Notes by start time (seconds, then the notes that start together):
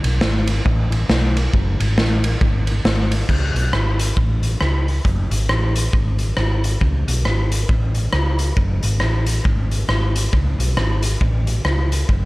0.04 B1, ride
0.21 G#1, snare
0.47 ride
0.66 A1, kick
0.92 ride
1.09 B1, snare
1.37 ride
1.54 F#1, kick
1.80 G#1, ride
1.97 A1, snare
2.24 ride
2.41 G#1, kick
2.67 ride
2.84 G#1, snare
3.12 open hi-hat, ride
3.29 C#2, kick, crash
3.54 B1, closed hi-hat
3.73 G#1, cross-stick
3.99 closed hi-hat
4.17 A1, kick
4.43 closed hi-hat
4.61 C#2, cross-stick
4.88 open hi-hat
5.05 F#1, kick, hi-hat pedal
5.30 G#1, closed hi-hat
5.49 A1, cross-stick
5.75 closed hi-hat
5.93 G#1, kick
6.19 closed hi-hat
6.37 G#1, cross-stick
6.64 closed hi-hat
6.81 C#2, kick
7.08 B1, closed hi-hat
7.25 G#1, cross-stick
7.52 closed hi-hat
7.69 A1, kick
7.95 closed hi-hat
8.13 C#2, cross-stick
8.39 closed hi-hat
8.57 F#1, kick
8.83 G#1, closed hi-hat
9.00 A1, cross-stick
9.26 closed hi-hat
9.45 G#1, kick
9.71 closed hi-hat
9.88 G#1, cross-stick
10.16 closed hi-hat
10.33 C#2, kick
10.59 B1, closed hi-hat
10.77 G#1, cross-stick
11.03 closed hi-hat
11.21 A1, kick
11.47 closed hi-hat
11.65 C#2, cross-stick
11.92 closed hi-hat
12.09 F#1, kick